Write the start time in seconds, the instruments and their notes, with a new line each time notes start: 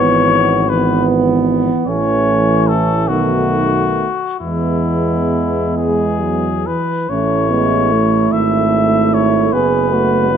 Already playing: tuba G#1, trombone E3, flugelhorn B3, euphonium B3, cornet C#5
0.69 trombone E3, flugelhorn B3, euphonium B3, cornet B4
1.86 tuba A1, trombone E3, euphonium A3, flugelhorn C#4, cornet C#5
2.68 cornet A4
3.08 tuba B1, trombone D#3, euphonium A3, flugelhorn B3, cornet F#4
4.39 tuba E2, trombone E3, euphonium G#3, flugelhorn B3, cornet E4
5.78 trombone G#3, cornet G#4
6.22 trombone F#3
6.67 trombone E3, cornet B4
7.09 tuba A1, euphonium A3, trombone C#4, flugelhorn E4, cornet C#5
7.50 euphonium G#3, trombone B3
7.92 trombone A3, euphonium A3
8.32 tuba G#1, cornet E5
9.14 cornet C#5
9.52 tuba F#1, trombone B3, euphonium B3, flugelhorn G#4, cornet B4
9.91 trombone A3, flugelhorn F#4
10.31 trombone F#3, flugelhorn E4